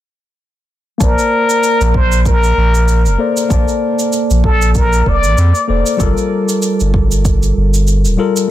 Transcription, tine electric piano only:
0, 0, Header, 1, 2, 480
1, 0, Start_track
1, 0, Key_signature, -2, "major"
1, 0, Tempo, 625000
1, 773, Time_signature, 4, 2, 24, 8
1, 6533, End_track
2, 0, Start_track
2, 0, Title_t, "Tine electric piano"
2, 0, Program_c, 0, 4
2, 753, Note_on_c, 0, 58, 78
2, 768, Note_on_c, 0, 81, 75
2, 780, Note_on_c, 0, 72, 76
2, 790, Note_on_c, 0, 74, 90
2, 921, Control_c, 0, 64, 127
2, 2418, Note_off_c, 0, 58, 0
2, 2425, Note_off_c, 0, 81, 0
2, 2431, Note_off_c, 0, 72, 0
2, 2436, Note_off_c, 0, 74, 0
2, 2444, Note_on_c, 0, 58, 68
2, 2449, Note_on_c, 0, 69, 61
2, 2455, Note_on_c, 0, 72, 66
2, 2461, Note_on_c, 0, 74, 75
2, 2663, Note_off_c, 0, 58, 0
2, 2666, Note_off_c, 0, 69, 0
2, 2669, Note_off_c, 0, 72, 0
2, 2672, Note_off_c, 0, 74, 0
2, 2676, Note_on_c, 0, 58, 64
2, 2688, Note_on_c, 0, 81, 61
2, 2699, Note_on_c, 0, 72, 58
2, 2710, Note_on_c, 0, 74, 74
2, 4339, Note_off_c, 0, 58, 0
2, 4345, Note_off_c, 0, 81, 0
2, 4350, Note_off_c, 0, 72, 0
2, 4356, Note_off_c, 0, 74, 0
2, 4360, Note_on_c, 0, 58, 65
2, 4367, Note_on_c, 0, 69, 61
2, 4374, Note_on_c, 0, 72, 64
2, 4379, Note_on_c, 0, 74, 76
2, 4581, Note_off_c, 0, 58, 0
2, 4584, Note_off_c, 0, 69, 0
2, 4585, Note_on_c, 0, 55, 83
2, 4588, Note_off_c, 0, 72, 0
2, 4591, Note_off_c, 0, 74, 0
2, 4597, Note_on_c, 0, 65, 78
2, 4611, Note_on_c, 0, 69, 78
2, 4623, Note_on_c, 0, 70, 88
2, 4624, Control_c, 0, 64, 0
2, 4754, Control_c, 0, 64, 127
2, 6254, Note_off_c, 0, 55, 0
2, 6260, Note_off_c, 0, 65, 0
2, 6267, Note_off_c, 0, 69, 0
2, 6273, Note_off_c, 0, 70, 0
2, 6277, Note_on_c, 0, 55, 68
2, 6286, Note_on_c, 0, 65, 65
2, 6291, Note_on_c, 0, 69, 67
2, 6295, Note_on_c, 0, 70, 75
2, 6500, Note_off_c, 0, 55, 0
2, 6504, Note_off_c, 0, 65, 0
2, 6507, Note_off_c, 0, 69, 0
2, 6509, Note_off_c, 0, 70, 0
2, 6533, End_track
0, 0, End_of_file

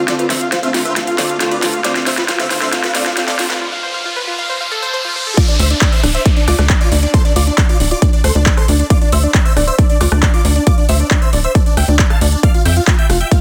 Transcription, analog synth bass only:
0, 0, Header, 1, 2, 480
1, 0, Start_track
1, 0, Key_signature, -1, "minor"
1, 0, Tempo, 441176
1, 88, Time_signature, 4, 2, 24, 8
1, 14589, End_track
2, 0, Start_track
2, 0, Title_t, "Analog synth bass"
2, 0, Program_c, 0, 38
2, 6088, Note_on_c, 0, 38, 102
2, 6246, Note_off_c, 0, 38, 0
2, 6568, Note_on_c, 0, 26, 95
2, 6727, Note_off_c, 0, 26, 0
2, 7047, Note_on_c, 0, 38, 89
2, 7127, Note_off_c, 0, 38, 0
2, 7166, Note_on_c, 0, 38, 92
2, 7326, Note_off_c, 0, 38, 0
2, 7526, Note_on_c, 0, 38, 107
2, 7686, Note_off_c, 0, 38, 0
2, 8006, Note_on_c, 0, 38, 101
2, 8166, Note_off_c, 0, 38, 0
2, 8488, Note_on_c, 0, 26, 96
2, 8647, Note_off_c, 0, 26, 0
2, 8968, Note_on_c, 0, 38, 90
2, 9047, Note_off_c, 0, 38, 0
2, 9089, Note_on_c, 0, 38, 93
2, 9247, Note_off_c, 0, 38, 0
2, 9449, Note_on_c, 0, 38, 104
2, 9607, Note_off_c, 0, 38, 0
2, 9928, Note_on_c, 0, 38, 106
2, 10087, Note_off_c, 0, 38, 0
2, 10407, Note_on_c, 0, 26, 94
2, 10566, Note_off_c, 0, 26, 0
2, 10889, Note_on_c, 0, 38, 87
2, 10968, Note_off_c, 0, 38, 0
2, 11008, Note_on_c, 0, 38, 94
2, 11167, Note_off_c, 0, 38, 0
2, 11368, Note_on_c, 0, 38, 101
2, 11526, Note_off_c, 0, 38, 0
2, 11848, Note_on_c, 0, 38, 104
2, 12007, Note_off_c, 0, 38, 0
2, 12328, Note_on_c, 0, 26, 96
2, 12486, Note_off_c, 0, 26, 0
2, 12807, Note_on_c, 0, 38, 84
2, 12887, Note_off_c, 0, 38, 0
2, 12927, Note_on_c, 0, 38, 88
2, 13086, Note_off_c, 0, 38, 0
2, 13288, Note_on_c, 0, 38, 103
2, 13446, Note_off_c, 0, 38, 0
2, 13769, Note_on_c, 0, 41, 102
2, 13927, Note_off_c, 0, 41, 0
2, 14248, Note_on_c, 0, 29, 96
2, 14407, Note_off_c, 0, 29, 0
2, 14589, End_track
0, 0, End_of_file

